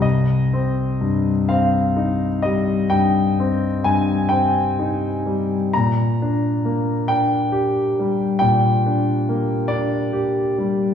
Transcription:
X:1
M:12/8
L:1/8
Q:3/8=44
K:Cm
V:1 name="Grand piano"
e3 f2 e g2 a g3 | b3 g3 g3 d3 |]
V:2 name="Grand piano"
C,, C G,, C E G, G,, C G,, C E G, | B,, D B, D G G, B,, D B, D G G, |]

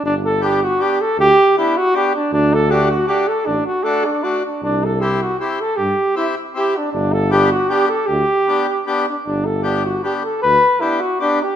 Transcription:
X:1
M:3/4
L:1/8
Q:"Swing" 1/4=156
K:G
V:1 name="Flugelhorn"
D A G F G A | G2 E F G D | D A G F G A | D F A D F D |
D A G F G A | G2 E z G D | D A G F G A | G4 z D |
D A G F G A | B2 E F D G |]
V:2 name="Accordion"
z2 [B,DG] z [B,DG] z | z2 [B,DG] z [B,DG] z | z2 [A,DF] z [A,DF] z | z2 [A,DF] z [A,DF] z |
z2 [CEG] z [CEG] z | z2 [CEG] z [CEG] z | z2 [B,DG] z [B,DG] z | z2 [B,DG] z [B,DG] z |
z2 [B,DG] z [B,DG] z | z2 [B,DG] z [B,DG] z |]
V:3 name="Tuba" clef=bass
G,,,6 | D,, z4 z | D,,6 | A,,, z4 z |
C,,6 | G,, z4 z | G,,,6 | D,, z4 z |
G,,,6 | D,, z4 z |]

